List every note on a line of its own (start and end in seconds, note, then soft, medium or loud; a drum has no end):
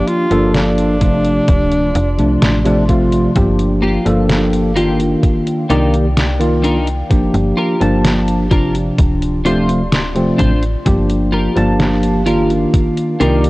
0.00 0.25 F3 medium
0.00 0.25 A#3 medium
0.00 0.26 D4 medium
0.00 0.26 G4 medium
0.00 1.47 G4 medium
0.00 1.47 F5 medium
0.08 0.54 F4 loud
0.08 closed hi-hat soft
0.30 1.41 G1 medium
0.30 0.95 F3 medium
0.30 0.96 A#3 medium
0.30 0.96 D4 medium
0.30 0.96 A4 loud
0.30 closed hi-hat soft
0.54 2.85 D4 loud
0.54 snare loud
0.54 closed hi-hat medium
0.78 closed hi-hat soft
1.01 1.89 C3 medium
1.01 1.89 F3 medium
1.01 1.90 A3 medium
1.01 1.90 D4 medium
1.01 kick medium
1.01 closed hi-hat medium
1.25 closed hi-hat soft
1.48 1.95 D1 medium
1.48 3.34 F4 medium
1.48 3.34 D5 medium
1.48 3.34 C6 medium
1.48 kick loud
1.48 closed hi-hat medium
1.72 closed hi-hat soft
1.95 2.20 F1 loud
1.95 closed hi-hat medium
2.18 2.37 C2 medium
2.18 2.59 C3 medium
2.18 2.60 F3 medium
2.18 2.60 A3 medium
2.18 2.60 D4 medium
2.18 closed hi-hat soft
2.42 3.28 A1 medium
2.42 snare loud
2.42 closed hi-hat medium
2.65 2.83 C3 medium
2.65 2.83 F3 medium
2.65 2.83 A3 medium
2.65 2.84 D4 loud
2.65 closed hi-hat soft
2.88 3.30 C3 medium
2.88 3.30 F3 medium
2.88 3.30 A3 medium
2.88 3.30 F4 loud
2.88 kick medium
2.88 closed hi-hat medium
3.12 closed hi-hat soft
3.35 3.99 G1 loud
3.35 4.00 F3 medium
3.35 4.00 A#3 medium
3.35 4.01 D4 medium
3.35 5.21 G4 medium
3.35 4.01 G4 medium
3.35 5.21 F5 medium
3.35 8.94 G5 medium
3.35 kick loud
3.35 closed hi-hat loud
3.59 closed hi-hat soft
3.82 4.06 A#3 medium
3.82 4.06 F4 medium
3.82 4.06 G4 medium
4.05 5.16 G1 medium
4.05 4.70 F3 medium
4.05 4.71 A#3 medium
4.05 4.71 D4 medium
4.05 4.71 A4 loud
4.05 closed hi-hat soft
4.29 snare loud
4.29 closed hi-hat medium
4.53 closed hi-hat soft
4.75 5.64 D#3 medium
4.75 4.99 A#3 medium
4.75 5.64 A#3 medium
4.75 5.65 D4 medium
4.75 5.00 F4 medium
4.75 5.65 F4 medium
4.75 5.00 G4 loud
4.75 closed hi-hat medium
5.00 closed hi-hat soft
5.23 7.09 D#3 medium
5.23 7.09 D5 medium
5.23 8.94 F5 medium
5.23 kick loud
5.23 closed hi-hat medium
5.47 closed hi-hat soft
5.69 7.03 C2 medium
5.69 6.05 D#3 medium
5.69 6.05 A#3 medium
5.69 5.93 D4 medium
5.69 5.94 D#4 medium
5.69 5.94 F4 medium
5.69 6.06 G4 loud
5.69 5.94 A#4 medium
5.69 6.05 D5 medium
5.69 closed hi-hat medium
5.94 closed hi-hat soft
6.17 snare loud
6.17 closed hi-hat loud
6.39 6.75 D#3 medium
6.39 6.75 A#3 medium
6.39 6.76 F4 medium
6.39 6.75 D5 medium
6.39 closed hi-hat soft
6.63 6.87 D4 medium
6.63 6.87 D#4 medium
6.63 6.88 F4 medium
6.63 6.88 A#4 medium
6.63 closed hi-hat medium
6.87 closed hi-hat soft
7.10 7.30 G1 soft
7.10 7.75 F3 medium
7.10 7.75 A#3 medium
7.10 7.75 D4 medium
7.10 8.97 G4 medium
7.10 7.76 G4 medium
7.10 kick loud
7.10 closed hi-hat loud
7.34 7.53 G1 medium
7.34 closed hi-hat soft
7.57 7.81 F4 medium
7.57 7.81 G4 medium
7.57 7.81 A#4 loud
7.80 8.91 G1 medium
7.80 8.45 F3 medium
7.80 8.46 A#3 medium
7.80 8.46 D4 medium
7.80 8.46 A5 loud
7.80 closed hi-hat soft
8.05 snare loud
8.05 closed hi-hat medium
8.28 closed hi-hat soft
8.51 9.39 C3 medium
8.51 9.39 F3 medium
8.51 9.40 D4 medium
8.51 8.75 F4 medium
8.51 8.75 G4 medium
8.51 8.75 A#4 medium
8.51 kick loud
8.51 closed hi-hat medium
8.75 closed hi-hat soft
8.98 10.31 D1 medium
8.98 10.84 F4 medium
8.98 10.84 D5 medium
8.98 10.84 C6 medium
8.98 kick loud
8.98 closed hi-hat medium
9.22 closed hi-hat soft
9.44 9.80 C3 medium
9.44 9.80 F3 medium
9.44 9.80 A3 medium
9.44 9.68 D4 medium
9.44 9.69 F4 medium
9.44 9.81 F4 loud
9.44 9.69 C5 loud
9.44 closed hi-hat medium
9.69 closed hi-hat soft
9.92 snare loud
9.92 closed hi-hat loud
10.15 10.50 C3 medium
10.15 10.50 F3 medium
10.15 10.51 A3 medium
10.15 10.51 C4 loud
10.15 closed hi-hat soft
10.38 10.76 A1 medium
10.38 10.62 D4 medium
10.38 10.62 F4 medium
10.38 10.63 C5 medium
10.38 kick medium
10.38 closed hi-hat medium
10.63 closed hi-hat soft
10.85 11.49 G1 loud
10.85 11.50 F3 medium
10.85 11.50 A#3 medium
10.85 11.51 D4 medium
10.85 12.71 G4 medium
10.85 11.51 G4 medium
10.85 13.50 F5 medium
10.85 kick loud
10.85 closed hi-hat medium
11.09 closed hi-hat soft
11.32 11.56 F4 medium
11.32 11.56 G4 medium
11.32 11.56 A#4 loud
11.55 12.66 G1 medium
11.55 12.20 F3 medium
11.55 12.21 A#3 medium
11.55 12.21 D4 medium
11.55 12.21 A5 loud
11.55 closed hi-hat soft
11.80 snare loud
11.80 closed hi-hat medium
12.03 closed hi-hat soft
12.26 13.14 D#3 medium
12.26 13.14 A#3 medium
12.26 13.15 D4 medium
12.26 12.50 F4 medium
12.26 13.15 F4 medium
12.26 12.50 G4 medium
12.26 12.50 A#4 medium
12.26 closed hi-hat medium
12.50 closed hi-hat soft
12.73 13.50 D#3 medium
12.73 13.50 A#4 medium
12.73 13.50 D5 medium
12.73 kick loud
12.73 closed hi-hat medium
12.97 closed hi-hat soft
13.19 13.50 C2 medium
13.19 13.50 D#3 medium
13.19 13.50 A#3 medium
13.19 13.43 D4 medium
13.19 13.44 D#4 medium
13.19 13.44 F4 medium
13.19 13.50 G4 loud
13.19 13.44 A#4 medium
13.19 13.50 D5 medium
13.19 closed hi-hat medium
13.44 closed hi-hat soft